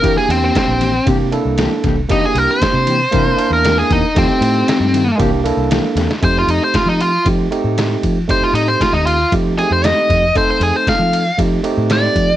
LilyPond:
<<
  \new Staff \with { instrumentName = "Lead electric guitar" } { \time 4/4 \key f \mixolydian \tempo 4 = 116 bes'16 aes'16 c'16 c'16 c'4 r2 | ees'16 aes'16 bes'16 c''2 bes'8 aes'16 ees'8 | c'2 r2 | c''16 f'16 ees'16 c''16 f'16 ees'16 f'8 r2 |
c''16 f'16 ees'16 c''16 f'16 ees'16 f'8 r8 aes'16 c''16 ees''4 | c''16 c''16 aes'16 c''16 f''4 r4 d''4 | }
  \new Staff \with { instrumentName = "Tine electric piano" } { \time 4/4 \key f \mixolydian <bes d' e' g'>4. r8 <bes d' e' g'>8 <bes d' e' a'>4. | <bes d' e' g'>4. r8 <bes d' e' bes'>8 <bes d' e' bes'>4. | <a c' ees' g'>4. r8 <bes d' e' g'>8 <bes d' e' a'>4. | <a c' ees' g'>4. r8 <a c' ees' g'>8 <a c' ees' g'>4. |
<a c' ees' g'>4. r8 <a c' ees' g'>8 <a c' ees' g'>4. | <a c' ees' a'>4. r8 <a c' ees' g'>8 <a c' ees' g'>4. | }
  \new Staff \with { instrumentName = "Clean electric guitar" } { \time 4/4 \key f \mixolydian <e bes c' g'>16 r8 <bes c' g'>16 r8 <e bes c' g'>16 r16 <e bes c' g'>16 r8. <e bes c' g'>16 r16 <e bes c' g'>16 r16 | <e bes c' g'>16 r8 <bes c' g'>16 r8 <e bes c' g'>16 r16 <e bes c' g'>16 r8. <e bes c' g'>16 r16 <e bes c' g'>16 r16 | <ees a c' f'>16 r8 <a c' f'>16 r8 <ees a c' f'>16 r16 <e bes c' g'>16 r8. <e bes c' g'>16 r16 <e bes c' g'>16 r16 | r1 |
r1 | r1 | }
  \new Staff \with { instrumentName = "Fingered electric bass" } { \clef bass \time 4/4 \key f \mixolydian r8 e,8 r16 bes,,8. c8. c,8 r16 c,8 | r8 c,16 r8 c8. c8 r16 e,8. e,16 r16 | f,16 r16 a,8 r16 g,8. c,8. c,8 r16 e,16 r16 | f,8 f,16 r8 f8. f8 r16 a,8. f8 |
r8 a,8 r16 ees,8. f8. f,8 r16 f,8 | r8 f,16 r8 f8. f8 r16 a,8. f8 | }
  \new DrumStaff \with { instrumentName = "Drums" } \drummode { \time 4/4 <bd cymr>8 cymr8 <bd cymr sn>8 cymr8 <bd cymr>8 cymr8 <cymr sn>8 <bd cymr sn>8 | <bd cymr>8 cymr8 <bd cymr sn>8 cymr8 <bd cymr>8 cymr8 <cymr sn>8 <bd cymr>8 | <bd cymr>8 cymr8 <cymr sn>8 cymr8 <bd cymr>8 cymr8 <cymr sn>8 <cymr sn>16 sn16 | <bd cymr>8 cymr8 <bd cymr sn>8 cymr8 <bd cymr>8 cymr8 <cymr sn>8 <bd cymr>8 |
<bd cymr>8 cymr8 <bd cymr sn>8 cymr8 <bd cymr>8 cymr8 <cymr sn>8 <bd cymr sn>8 | <bd cymr>8 cymr8 <bd cymr sn>8 cymr8 <bd cymr>8 cymr8 <cymr sn>8 <bd cymr>8 | }
>>